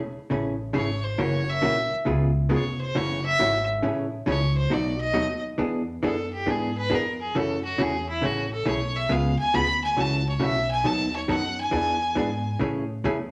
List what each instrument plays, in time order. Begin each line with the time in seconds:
Already playing: upright bass E1
0.30 upright bass A1, hollow-body jazz guitar C#3 E3 A3 C#4 G#4
0.73 upright bass G#1, hollow-body jazz guitar C#3 E3 A3 C#4 G#4, fiddle C#5
1.04 fiddle C5
1.18 upright bass F#1, hollow-body jazz guitar C#3 E3 A#3 C#4 F#4, fiddle C#5
1.50 fiddle E5
1.62 upright bass A#1, hollow-body jazz guitar C#3 E3 A#3 C#4 F#4
1.93 muted upright bass stroke
2.05 upright bass C#2, hollow-body jazz guitar C#3 G#3 B3 F4 G#4
2.49 upright bass F1, hollow-body jazz guitar C#3 G#3 B3 F4 G#4
2.54 fiddle C#5
2.81 fiddle C5
2.95 upright bass F#1, hollow-body jazz guitar C#3 E3 A3 C#4 F#4, fiddle C#5
3.25 fiddle E5
3.39 upright bass G#1, hollow-body jazz guitar C#3 E3 A3 C#4 F#4
3.82 upright bass A1, hollow-body jazz guitar C#3 E3 A3 C#4 G#4
4.26 upright bass C#2, hollow-body jazz guitar C#3 E3 A3 C#4 G#4, fiddle C#5
4.57 fiddle C5
4.70 upright bass B1, hollow-body jazz guitar B2 F#3 A3 D#4 F#4, fiddle D5
5.00 fiddle D#5
5.14 upright bass D#2, hollow-body jazz guitar B2 F#3 A3 D#4 F#4
5.58 upright bass E2, hollow-body jazz guitar E3 B3 D4 G#4
6.03 upright bass F#2, hollow-body jazz guitar E3 B3 D4 G#4, fiddle A4
6.33 fiddle G4
6.46 upright bass G#2, hollow-body jazz guitar E3 B3 D4 G#4, fiddle G#4
6.77 fiddle B4
6.90 upright bass F2, hollow-body jazz guitar E3 B3 D4 G#4
6.95 fiddle A#4
7.21 fiddle G#4
7.35 upright bass F#2, hollow-body jazz guitar C#3 E3 A3 C#4 F#4, fiddle A4
7.64 fiddle F#4
7.78 upright bass E2, hollow-body jazz guitar C#3 E3 A3 C#4 F#4, fiddle G#4
8.09 fiddle E4
8.22 upright bass A1, hollow-body jazz guitar C#3 E3 A3 C#4 G#4, fiddle F#4
8.53 fiddle A4
8.65 upright bass B1, hollow-body jazz guitar C#3 E3 A3 C#4 G#4, fiddle C#5
8.95 fiddle E5
9.09 upright bass C#2, hollow-body jazz guitar C#3 G#3 B3 F4 G#4, fiddle F5
9.39 fiddle G#5
9.54 upright bass D2, hollow-body jazz guitar C#3 G#3 B3 F4 G#4, fiddle B5
9.84 fiddle G#5
9.97 upright bass C#2, hollow-body jazz guitar C#3 E3 A3 C#4 F#4, fiddle A5
10.29 fiddle C#5
10.40 upright bass B1, hollow-body jazz guitar C#3 E3 A3 C#4 F#4, fiddle E5
10.71 fiddle G#5
10.84 upright bass D#2, hollow-body jazz guitar D#3 F#3 B3 D#4 A4, fiddle A5
11.16 fiddle C#5
11.28 upright bass F#2, hollow-body jazz guitar D#3 F#3 B3 D#4 A4, fiddle F#5
11.60 fiddle G#5
11.71 upright bass E2, hollow-body jazz guitar E3 B3 D4 G#4
12.15 upright bass G#2, hollow-body jazz guitar E3 B3 D4 G#4
12.59 upright bass A2, hollow-body jazz guitar C#3 E3 A3 C#4 G#4
13.04 upright bass E2, hollow-body jazz guitar C#3 E3 A3 C#4 G#4